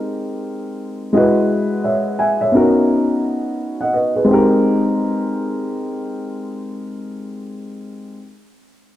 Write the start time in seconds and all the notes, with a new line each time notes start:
Already playing: G#3 C4 D#4 G4 A#4
1.13 G#3 E4 F#4 D#5
1.17 B4
1.84 C#5 E5
2.19 E5 G#5
2.41 C#5 E5
2.52 B3 C#4 D#4 F#4
2.56 A#4
3.81 D#5 F#5
3.93 B4 D#5
4.16 G#4 B4
4.25 G#3 C4
4.29 D#4 G4
4.33 A#4